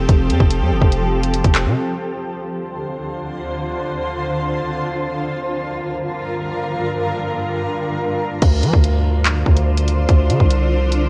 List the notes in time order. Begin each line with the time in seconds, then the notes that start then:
Already playing: F3 C4 G4 A4
0.09 F1, kick, closed hi-hat
0.30 F2, closed hi-hat
0.40 F1, kick
0.51 closed hi-hat
0.61 F2
0.71 F1
0.82 F1, kick
0.92 closed hi-hat
1.23 closed hi-hat
1.34 closed hi-hat
1.44 F1, kick, closed hi-hat
1.55 clap, closed hi-hat
1.65 C3
1.76 D2 D3 F4 C5
5.09 G2 D3 A#4
8.42 D2 D3 D4 F4 C5, kick, closed hi-hat, crash
8.63 F3, closed hi-hat
8.74 D2, kick
8.84 closed hi-hat
9.26 clap, closed hi-hat
9.46 D2, kick
9.57 closed hi-hat
9.78 closed hi-hat
9.88 closed hi-hat
10.09 D2, kick, closed hi-hat
10.30 D3, closed hi-hat
10.40 C2, kick
10.51 closed hi-hat
10.92 closed hi-hat